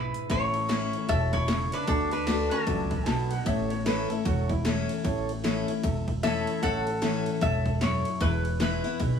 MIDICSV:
0, 0, Header, 1, 7, 480
1, 0, Start_track
1, 0, Key_signature, 3, "major"
1, 0, Tempo, 395517
1, 360, Time_signature, 4, 2, 24, 8
1, 11159, End_track
2, 0, Start_track
2, 0, Title_t, "Upright piano"
2, 0, Program_c, 0, 0
2, 3677, Note_on_c, 0, 80, 60
2, 3714, Note_off_c, 0, 80, 0
2, 3731, Note_on_c, 0, 81, 99
2, 4011, Note_off_c, 0, 81, 0
2, 4014, Note_on_c, 0, 78, 78
2, 4196, Note_off_c, 0, 78, 0
2, 4207, Note_on_c, 0, 76, 90
2, 4489, Note_off_c, 0, 76, 0
2, 4497, Note_on_c, 0, 73, 80
2, 4678, Note_off_c, 0, 73, 0
2, 4687, Note_on_c, 0, 71, 92
2, 4969, Note_off_c, 0, 71, 0
2, 4976, Note_on_c, 0, 69, 90
2, 5157, Note_off_c, 0, 69, 0
2, 5166, Note_on_c, 0, 66, 89
2, 5448, Note_off_c, 0, 66, 0
2, 5456, Note_on_c, 0, 64, 78
2, 5921, Note_off_c, 0, 64, 0
2, 11159, End_track
3, 0, Start_track
3, 0, Title_t, "Resonator guitar played with a steel bar"
3, 0, Program_c, 1, 25
3, 0, Note_on_c, 1, 64, 62
3, 0, Note_on_c, 1, 71, 76
3, 337, Note_off_c, 1, 64, 0
3, 338, Note_off_c, 1, 71, 0
3, 375, Note_on_c, 1, 64, 68
3, 376, Note_on_c, 1, 73, 103
3, 1280, Note_off_c, 1, 64, 0
3, 1324, Note_on_c, 1, 69, 81
3, 1324, Note_on_c, 1, 76, 107
3, 1357, Note_off_c, 1, 73, 0
3, 1595, Note_off_c, 1, 69, 0
3, 1615, Note_on_c, 1, 73, 106
3, 1623, Note_off_c, 1, 76, 0
3, 1624, Note_on_c, 1, 64, 87
3, 2066, Note_off_c, 1, 64, 0
3, 2099, Note_off_c, 1, 73, 0
3, 2104, Note_on_c, 1, 71, 98
3, 2112, Note_on_c, 1, 62, 73
3, 2273, Note_off_c, 1, 62, 0
3, 2274, Note_off_c, 1, 71, 0
3, 2278, Note_on_c, 1, 69, 84
3, 2288, Note_on_c, 1, 62, 63
3, 2557, Note_off_c, 1, 62, 0
3, 2573, Note_off_c, 1, 69, 0
3, 2578, Note_on_c, 1, 71, 83
3, 2583, Note_on_c, 1, 62, 67
3, 3026, Note_off_c, 1, 62, 0
3, 3052, Note_on_c, 1, 69, 76
3, 3055, Note_on_c, 1, 61, 61
3, 3070, Note_off_c, 1, 71, 0
3, 3965, Note_off_c, 1, 69, 0
3, 3966, Note_off_c, 1, 61, 0
3, 7563, Note_on_c, 1, 76, 95
3, 7576, Note_on_c, 1, 69, 82
3, 8016, Note_off_c, 1, 69, 0
3, 8041, Note_off_c, 1, 76, 0
3, 8046, Note_on_c, 1, 78, 104
3, 8057, Note_on_c, 1, 69, 89
3, 8956, Note_off_c, 1, 78, 0
3, 8962, Note_off_c, 1, 69, 0
3, 9010, Note_on_c, 1, 76, 99
3, 9013, Note_on_c, 1, 69, 71
3, 9455, Note_off_c, 1, 69, 0
3, 9494, Note_on_c, 1, 73, 85
3, 9500, Note_off_c, 1, 76, 0
3, 9504, Note_on_c, 1, 64, 78
3, 9941, Note_off_c, 1, 64, 0
3, 9970, Note_on_c, 1, 71, 91
3, 9980, Note_on_c, 1, 64, 61
3, 9983, Note_off_c, 1, 73, 0
3, 10413, Note_off_c, 1, 71, 0
3, 10419, Note_off_c, 1, 64, 0
3, 10453, Note_on_c, 1, 64, 58
3, 10457, Note_on_c, 1, 71, 82
3, 11159, Note_off_c, 1, 64, 0
3, 11159, Note_off_c, 1, 71, 0
3, 11159, End_track
4, 0, Start_track
4, 0, Title_t, "Tonewheel organ"
4, 0, Program_c, 2, 16
4, 348, Note_on_c, 2, 64, 91
4, 356, Note_on_c, 2, 69, 81
4, 364, Note_on_c, 2, 73, 93
4, 691, Note_off_c, 2, 64, 0
4, 695, Note_off_c, 2, 69, 0
4, 699, Note_off_c, 2, 73, 0
4, 832, Note_on_c, 2, 64, 73
4, 838, Note_on_c, 2, 69, 68
4, 850, Note_on_c, 2, 73, 79
4, 1173, Note_off_c, 2, 64, 0
4, 1177, Note_off_c, 2, 69, 0
4, 1182, Note_off_c, 2, 73, 0
4, 1302, Note_on_c, 2, 64, 71
4, 1313, Note_on_c, 2, 69, 62
4, 1321, Note_on_c, 2, 73, 83
4, 1648, Note_off_c, 2, 64, 0
4, 1654, Note_off_c, 2, 69, 0
4, 1658, Note_off_c, 2, 73, 0
4, 1789, Note_on_c, 2, 64, 70
4, 1800, Note_on_c, 2, 69, 66
4, 1809, Note_on_c, 2, 73, 75
4, 2132, Note_off_c, 2, 64, 0
4, 2138, Note_off_c, 2, 69, 0
4, 2142, Note_off_c, 2, 73, 0
4, 2276, Note_on_c, 2, 66, 88
4, 2282, Note_on_c, 2, 69, 84
4, 2294, Note_on_c, 2, 74, 98
4, 2615, Note_off_c, 2, 66, 0
4, 2619, Note_off_c, 2, 69, 0
4, 2625, Note_off_c, 2, 74, 0
4, 2751, Note_on_c, 2, 66, 73
4, 2757, Note_on_c, 2, 69, 68
4, 2768, Note_on_c, 2, 74, 77
4, 3093, Note_off_c, 2, 66, 0
4, 3096, Note_off_c, 2, 69, 0
4, 3101, Note_off_c, 2, 74, 0
4, 3233, Note_on_c, 2, 66, 82
4, 3244, Note_on_c, 2, 69, 65
4, 3255, Note_on_c, 2, 74, 77
4, 3574, Note_off_c, 2, 66, 0
4, 3580, Note_off_c, 2, 69, 0
4, 3585, Note_off_c, 2, 74, 0
4, 3708, Note_on_c, 2, 66, 84
4, 3720, Note_on_c, 2, 69, 76
4, 3729, Note_on_c, 2, 71, 100
4, 4052, Note_off_c, 2, 66, 0
4, 4058, Note_off_c, 2, 69, 0
4, 4062, Note_off_c, 2, 71, 0
4, 4187, Note_on_c, 2, 64, 92
4, 4196, Note_on_c, 2, 69, 104
4, 4206, Note_on_c, 2, 73, 117
4, 4531, Note_off_c, 2, 64, 0
4, 4536, Note_off_c, 2, 69, 0
4, 4541, Note_off_c, 2, 73, 0
4, 4667, Note_on_c, 2, 64, 88
4, 4680, Note_on_c, 2, 69, 88
4, 4690, Note_on_c, 2, 73, 96
4, 5011, Note_off_c, 2, 64, 0
4, 5018, Note_off_c, 2, 69, 0
4, 5023, Note_off_c, 2, 73, 0
4, 5154, Note_on_c, 2, 64, 88
4, 5165, Note_on_c, 2, 69, 81
4, 5171, Note_on_c, 2, 73, 109
4, 5495, Note_off_c, 2, 64, 0
4, 5501, Note_off_c, 2, 69, 0
4, 5504, Note_off_c, 2, 73, 0
4, 5635, Note_on_c, 2, 64, 90
4, 5644, Note_on_c, 2, 69, 75
4, 5656, Note_on_c, 2, 73, 92
4, 5975, Note_off_c, 2, 64, 0
4, 5980, Note_off_c, 2, 69, 0
4, 5986, Note_off_c, 2, 73, 0
4, 6112, Note_on_c, 2, 64, 109
4, 6119, Note_on_c, 2, 69, 97
4, 6127, Note_on_c, 2, 73, 118
4, 6454, Note_off_c, 2, 64, 0
4, 6458, Note_off_c, 2, 69, 0
4, 6462, Note_off_c, 2, 73, 0
4, 6586, Note_on_c, 2, 64, 94
4, 6596, Note_on_c, 2, 69, 79
4, 6607, Note_on_c, 2, 73, 94
4, 6931, Note_off_c, 2, 64, 0
4, 6936, Note_off_c, 2, 69, 0
4, 6942, Note_off_c, 2, 73, 0
4, 7071, Note_on_c, 2, 64, 84
4, 7080, Note_on_c, 2, 69, 80
4, 7090, Note_on_c, 2, 76, 97
4, 7414, Note_off_c, 2, 64, 0
4, 7418, Note_off_c, 2, 69, 0
4, 7423, Note_off_c, 2, 76, 0
4, 7548, Note_on_c, 2, 64, 72
4, 7559, Note_on_c, 2, 69, 57
4, 7566, Note_on_c, 2, 73, 74
4, 7892, Note_off_c, 2, 64, 0
4, 7898, Note_off_c, 2, 69, 0
4, 7902, Note_off_c, 2, 73, 0
4, 8031, Note_on_c, 2, 64, 93
4, 8044, Note_on_c, 2, 69, 76
4, 8053, Note_on_c, 2, 73, 95
4, 8374, Note_off_c, 2, 64, 0
4, 8380, Note_off_c, 2, 69, 0
4, 8385, Note_off_c, 2, 73, 0
4, 8515, Note_on_c, 2, 64, 74
4, 8525, Note_on_c, 2, 69, 72
4, 8535, Note_on_c, 2, 73, 90
4, 8856, Note_off_c, 2, 64, 0
4, 8861, Note_off_c, 2, 69, 0
4, 8866, Note_off_c, 2, 73, 0
4, 8998, Note_on_c, 2, 64, 70
4, 9007, Note_on_c, 2, 69, 68
4, 9018, Note_on_c, 2, 73, 72
4, 9337, Note_off_c, 2, 64, 0
4, 9342, Note_off_c, 2, 69, 0
4, 9347, Note_off_c, 2, 73, 0
4, 9478, Note_on_c, 2, 64, 70
4, 9484, Note_on_c, 2, 69, 67
4, 9495, Note_on_c, 2, 73, 73
4, 9817, Note_off_c, 2, 64, 0
4, 9820, Note_off_c, 2, 69, 0
4, 9826, Note_off_c, 2, 73, 0
4, 9956, Note_on_c, 2, 64, 96
4, 9961, Note_on_c, 2, 68, 74
4, 9972, Note_on_c, 2, 71, 89
4, 10296, Note_off_c, 2, 64, 0
4, 10299, Note_off_c, 2, 68, 0
4, 10304, Note_off_c, 2, 71, 0
4, 10432, Note_on_c, 2, 64, 69
4, 10442, Note_on_c, 2, 68, 64
4, 10454, Note_on_c, 2, 71, 84
4, 10774, Note_off_c, 2, 64, 0
4, 10779, Note_off_c, 2, 68, 0
4, 10786, Note_off_c, 2, 71, 0
4, 10908, Note_on_c, 2, 64, 68
4, 10916, Note_on_c, 2, 68, 68
4, 10926, Note_on_c, 2, 71, 85
4, 11159, Note_off_c, 2, 64, 0
4, 11159, Note_off_c, 2, 68, 0
4, 11159, Note_off_c, 2, 71, 0
4, 11159, End_track
5, 0, Start_track
5, 0, Title_t, "Steel-string acoustic guitar"
5, 0, Program_c, 3, 25
5, 0, Note_on_c, 3, 44, 67
5, 344, Note_off_c, 3, 44, 0
5, 365, Note_on_c, 3, 45, 91
5, 833, Note_on_c, 3, 52, 77
5, 845, Note_on_c, 3, 57, 72
5, 852, Note_on_c, 3, 61, 85
5, 860, Note_on_c, 3, 64, 85
5, 1286, Note_off_c, 3, 45, 0
5, 1298, Note_off_c, 3, 52, 0
5, 1304, Note_off_c, 3, 57, 0
5, 1308, Note_off_c, 3, 61, 0
5, 1312, Note_off_c, 3, 64, 0
5, 1324, Note_on_c, 3, 47, 82
5, 1784, Note_off_c, 3, 47, 0
5, 1795, Note_on_c, 3, 49, 87
5, 2260, Note_off_c, 3, 49, 0
5, 2279, Note_on_c, 3, 50, 85
5, 2742, Note_off_c, 3, 50, 0
5, 2757, Note_on_c, 3, 50, 80
5, 2762, Note_on_c, 3, 57, 76
5, 2771, Note_on_c, 3, 62, 88
5, 2779, Note_on_c, 3, 66, 91
5, 3221, Note_off_c, 3, 50, 0
5, 3223, Note_off_c, 3, 57, 0
5, 3228, Note_off_c, 3, 62, 0
5, 3232, Note_off_c, 3, 66, 0
5, 3243, Note_on_c, 3, 42, 89
5, 3704, Note_off_c, 3, 42, 0
5, 3719, Note_on_c, 3, 47, 79
5, 4182, Note_off_c, 3, 47, 0
5, 4200, Note_on_c, 3, 45, 93
5, 4680, Note_on_c, 3, 52, 81
5, 4691, Note_on_c, 3, 57, 86
5, 4696, Note_on_c, 3, 61, 83
5, 4702, Note_on_c, 3, 64, 88
5, 4958, Note_off_c, 3, 64, 0
5, 4962, Note_off_c, 3, 52, 0
5, 4968, Note_off_c, 3, 57, 0
5, 4970, Note_off_c, 3, 61, 0
5, 4972, Note_on_c, 3, 64, 55
5, 4997, Note_on_c, 3, 61, 47
5, 5124, Note_off_c, 3, 45, 0
5, 5154, Note_off_c, 3, 64, 0
5, 5164, Note_on_c, 3, 40, 93
5, 5166, Note_off_c, 3, 61, 0
5, 5638, Note_on_c, 3, 52, 90
5, 5644, Note_on_c, 3, 57, 75
5, 5655, Note_on_c, 3, 61, 89
5, 5662, Note_on_c, 3, 64, 101
5, 6086, Note_off_c, 3, 40, 0
5, 6102, Note_off_c, 3, 52, 0
5, 6105, Note_off_c, 3, 57, 0
5, 6110, Note_off_c, 3, 61, 0
5, 6113, Note_off_c, 3, 64, 0
5, 6124, Note_on_c, 3, 45, 85
5, 6597, Note_on_c, 3, 52, 73
5, 6608, Note_on_c, 3, 57, 79
5, 6614, Note_on_c, 3, 61, 84
5, 6621, Note_on_c, 3, 64, 88
5, 6878, Note_off_c, 3, 64, 0
5, 6881, Note_off_c, 3, 52, 0
5, 6887, Note_off_c, 3, 57, 0
5, 6889, Note_off_c, 3, 61, 0
5, 6892, Note_on_c, 3, 64, 67
5, 6916, Note_on_c, 3, 61, 48
5, 7046, Note_off_c, 3, 45, 0
5, 7074, Note_off_c, 3, 64, 0
5, 7086, Note_off_c, 3, 61, 0
5, 7087, Note_on_c, 3, 40, 87
5, 7562, Note_on_c, 3, 52, 88
5, 7572, Note_on_c, 3, 57, 83
5, 7582, Note_on_c, 3, 61, 85
5, 7586, Note_on_c, 3, 64, 89
5, 8008, Note_off_c, 3, 40, 0
5, 8024, Note_off_c, 3, 52, 0
5, 8029, Note_off_c, 3, 57, 0
5, 8034, Note_off_c, 3, 61, 0
5, 8036, Note_off_c, 3, 64, 0
5, 8050, Note_on_c, 3, 45, 89
5, 8515, Note_on_c, 3, 52, 92
5, 8526, Note_on_c, 3, 57, 90
5, 8529, Note_on_c, 3, 61, 86
5, 8539, Note_on_c, 3, 64, 78
5, 8969, Note_off_c, 3, 45, 0
5, 8980, Note_off_c, 3, 52, 0
5, 8986, Note_off_c, 3, 57, 0
5, 8987, Note_off_c, 3, 61, 0
5, 8992, Note_off_c, 3, 64, 0
5, 9003, Note_on_c, 3, 44, 77
5, 9464, Note_off_c, 3, 44, 0
5, 9481, Note_on_c, 3, 42, 88
5, 9943, Note_off_c, 3, 42, 0
5, 9961, Note_on_c, 3, 40, 95
5, 10433, Note_on_c, 3, 52, 76
5, 10443, Note_on_c, 3, 56, 91
5, 10450, Note_on_c, 3, 59, 79
5, 10456, Note_on_c, 3, 64, 98
5, 10711, Note_off_c, 3, 64, 0
5, 10719, Note_off_c, 3, 52, 0
5, 10724, Note_off_c, 3, 56, 0
5, 10725, Note_on_c, 3, 64, 59
5, 10728, Note_off_c, 3, 59, 0
5, 10750, Note_on_c, 3, 59, 55
5, 10885, Note_off_c, 3, 40, 0
5, 10911, Note_off_c, 3, 64, 0
5, 10923, Note_off_c, 3, 59, 0
5, 10924, Note_on_c, 3, 47, 86
5, 11159, Note_off_c, 3, 47, 0
5, 11159, End_track
6, 0, Start_track
6, 0, Title_t, "Upright bass"
6, 0, Program_c, 4, 32
6, 363, Note_on_c, 4, 33, 92
6, 1064, Note_off_c, 4, 33, 0
6, 1321, Note_on_c, 4, 28, 94
6, 2024, Note_off_c, 4, 28, 0
6, 2278, Note_on_c, 4, 38, 94
6, 2982, Note_off_c, 4, 38, 0
6, 3240, Note_on_c, 4, 37, 88
6, 3649, Note_off_c, 4, 37, 0
6, 3721, Note_on_c, 4, 35, 85
6, 4129, Note_off_c, 4, 35, 0
6, 4199, Note_on_c, 4, 33, 89
6, 4903, Note_off_c, 4, 33, 0
6, 5165, Note_on_c, 4, 28, 91
6, 5867, Note_off_c, 4, 28, 0
6, 6123, Note_on_c, 4, 33, 94
6, 6825, Note_off_c, 4, 33, 0
6, 7083, Note_on_c, 4, 28, 83
6, 7785, Note_off_c, 4, 28, 0
6, 8043, Note_on_c, 4, 33, 96
6, 8746, Note_off_c, 4, 33, 0
6, 8999, Note_on_c, 4, 28, 94
6, 9703, Note_off_c, 4, 28, 0
6, 9960, Note_on_c, 4, 28, 97
6, 10664, Note_off_c, 4, 28, 0
6, 10922, Note_on_c, 4, 35, 89
6, 11159, Note_off_c, 4, 35, 0
6, 11159, End_track
7, 0, Start_track
7, 0, Title_t, "Drums"
7, 174, Note_on_c, 9, 42, 69
7, 295, Note_off_c, 9, 42, 0
7, 360, Note_on_c, 9, 51, 81
7, 361, Note_on_c, 9, 36, 124
7, 481, Note_off_c, 9, 51, 0
7, 482, Note_off_c, 9, 36, 0
7, 652, Note_on_c, 9, 51, 64
7, 773, Note_off_c, 9, 51, 0
7, 841, Note_on_c, 9, 38, 112
7, 841, Note_on_c, 9, 51, 80
7, 963, Note_off_c, 9, 38, 0
7, 963, Note_off_c, 9, 51, 0
7, 1133, Note_on_c, 9, 51, 54
7, 1255, Note_off_c, 9, 51, 0
7, 1318, Note_on_c, 9, 51, 77
7, 1320, Note_on_c, 9, 36, 98
7, 1439, Note_off_c, 9, 51, 0
7, 1442, Note_off_c, 9, 36, 0
7, 1613, Note_on_c, 9, 36, 85
7, 1613, Note_on_c, 9, 51, 59
7, 1734, Note_off_c, 9, 36, 0
7, 1734, Note_off_c, 9, 51, 0
7, 1799, Note_on_c, 9, 38, 123
7, 1799, Note_on_c, 9, 51, 92
7, 1920, Note_off_c, 9, 38, 0
7, 1920, Note_off_c, 9, 51, 0
7, 2090, Note_on_c, 9, 51, 75
7, 2211, Note_off_c, 9, 51, 0
7, 2275, Note_on_c, 9, 51, 94
7, 2277, Note_on_c, 9, 36, 124
7, 2396, Note_off_c, 9, 51, 0
7, 2399, Note_off_c, 9, 36, 0
7, 2566, Note_on_c, 9, 51, 69
7, 2687, Note_off_c, 9, 51, 0
7, 2752, Note_on_c, 9, 38, 111
7, 2752, Note_on_c, 9, 51, 90
7, 2873, Note_off_c, 9, 38, 0
7, 2873, Note_off_c, 9, 51, 0
7, 3049, Note_on_c, 9, 51, 61
7, 3171, Note_off_c, 9, 51, 0
7, 3236, Note_on_c, 9, 51, 84
7, 3238, Note_on_c, 9, 36, 116
7, 3358, Note_off_c, 9, 51, 0
7, 3359, Note_off_c, 9, 36, 0
7, 3529, Note_on_c, 9, 51, 68
7, 3531, Note_on_c, 9, 36, 78
7, 3650, Note_off_c, 9, 51, 0
7, 3653, Note_off_c, 9, 36, 0
7, 3715, Note_on_c, 9, 38, 127
7, 3715, Note_on_c, 9, 51, 97
7, 3837, Note_off_c, 9, 38, 0
7, 3837, Note_off_c, 9, 51, 0
7, 4012, Note_on_c, 9, 51, 77
7, 4133, Note_off_c, 9, 51, 0
7, 4198, Note_on_c, 9, 51, 91
7, 4200, Note_on_c, 9, 36, 121
7, 4319, Note_off_c, 9, 51, 0
7, 4321, Note_off_c, 9, 36, 0
7, 4494, Note_on_c, 9, 51, 70
7, 4616, Note_off_c, 9, 51, 0
7, 4684, Note_on_c, 9, 38, 113
7, 4684, Note_on_c, 9, 51, 87
7, 4806, Note_off_c, 9, 38, 0
7, 4806, Note_off_c, 9, 51, 0
7, 4975, Note_on_c, 9, 51, 59
7, 5097, Note_off_c, 9, 51, 0
7, 5162, Note_on_c, 9, 36, 123
7, 5163, Note_on_c, 9, 51, 78
7, 5284, Note_off_c, 9, 36, 0
7, 5284, Note_off_c, 9, 51, 0
7, 5455, Note_on_c, 9, 36, 87
7, 5455, Note_on_c, 9, 51, 62
7, 5576, Note_off_c, 9, 36, 0
7, 5577, Note_off_c, 9, 51, 0
7, 5643, Note_on_c, 9, 38, 119
7, 5643, Note_on_c, 9, 51, 81
7, 5764, Note_off_c, 9, 38, 0
7, 5764, Note_off_c, 9, 51, 0
7, 5938, Note_on_c, 9, 51, 76
7, 6059, Note_off_c, 9, 51, 0
7, 6123, Note_on_c, 9, 36, 119
7, 6123, Note_on_c, 9, 51, 84
7, 6244, Note_off_c, 9, 36, 0
7, 6245, Note_off_c, 9, 51, 0
7, 6421, Note_on_c, 9, 51, 65
7, 6542, Note_off_c, 9, 51, 0
7, 6606, Note_on_c, 9, 38, 125
7, 6606, Note_on_c, 9, 51, 83
7, 6727, Note_off_c, 9, 38, 0
7, 6727, Note_off_c, 9, 51, 0
7, 6896, Note_on_c, 9, 51, 60
7, 7017, Note_off_c, 9, 51, 0
7, 7081, Note_on_c, 9, 51, 81
7, 7083, Note_on_c, 9, 36, 107
7, 7202, Note_off_c, 9, 51, 0
7, 7204, Note_off_c, 9, 36, 0
7, 7376, Note_on_c, 9, 36, 70
7, 7376, Note_on_c, 9, 51, 59
7, 7497, Note_off_c, 9, 36, 0
7, 7497, Note_off_c, 9, 51, 0
7, 7565, Note_on_c, 9, 38, 107
7, 7565, Note_on_c, 9, 51, 97
7, 7686, Note_off_c, 9, 38, 0
7, 7686, Note_off_c, 9, 51, 0
7, 7856, Note_on_c, 9, 51, 68
7, 7977, Note_off_c, 9, 51, 0
7, 8042, Note_on_c, 9, 36, 115
7, 8043, Note_on_c, 9, 51, 94
7, 8163, Note_off_c, 9, 36, 0
7, 8164, Note_off_c, 9, 51, 0
7, 8336, Note_on_c, 9, 51, 71
7, 8457, Note_off_c, 9, 51, 0
7, 8520, Note_on_c, 9, 38, 105
7, 8520, Note_on_c, 9, 51, 88
7, 8642, Note_off_c, 9, 38, 0
7, 8642, Note_off_c, 9, 51, 0
7, 8813, Note_on_c, 9, 51, 65
7, 8934, Note_off_c, 9, 51, 0
7, 8997, Note_on_c, 9, 51, 80
7, 9000, Note_on_c, 9, 36, 123
7, 9118, Note_off_c, 9, 51, 0
7, 9121, Note_off_c, 9, 36, 0
7, 9290, Note_on_c, 9, 51, 53
7, 9292, Note_on_c, 9, 36, 71
7, 9412, Note_off_c, 9, 51, 0
7, 9413, Note_off_c, 9, 36, 0
7, 9479, Note_on_c, 9, 38, 117
7, 9479, Note_on_c, 9, 51, 89
7, 9600, Note_off_c, 9, 38, 0
7, 9600, Note_off_c, 9, 51, 0
7, 9772, Note_on_c, 9, 51, 70
7, 9894, Note_off_c, 9, 51, 0
7, 9958, Note_on_c, 9, 51, 84
7, 9960, Note_on_c, 9, 36, 126
7, 10080, Note_off_c, 9, 51, 0
7, 10081, Note_off_c, 9, 36, 0
7, 10253, Note_on_c, 9, 51, 66
7, 10375, Note_off_c, 9, 51, 0
7, 10437, Note_on_c, 9, 38, 119
7, 10437, Note_on_c, 9, 51, 81
7, 10558, Note_off_c, 9, 38, 0
7, 10558, Note_off_c, 9, 51, 0
7, 10732, Note_on_c, 9, 51, 56
7, 10854, Note_off_c, 9, 51, 0
7, 10917, Note_on_c, 9, 51, 84
7, 10921, Note_on_c, 9, 36, 106
7, 11039, Note_off_c, 9, 51, 0
7, 11042, Note_off_c, 9, 36, 0
7, 11159, End_track
0, 0, End_of_file